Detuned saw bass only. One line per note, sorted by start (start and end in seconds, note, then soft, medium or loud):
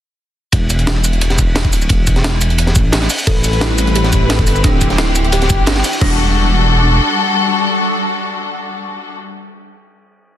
0.53 1.72 E1 loud
1.73 1.88 D1 medium
1.90 2.77 E1 loud
2.76 3.09 A1 loud
3.27 4.46 A1 loud
4.47 4.63 G1 medium
4.64 5.51 D1 loud
5.50 5.83 G1 loud
6.01 7.00 E1 loud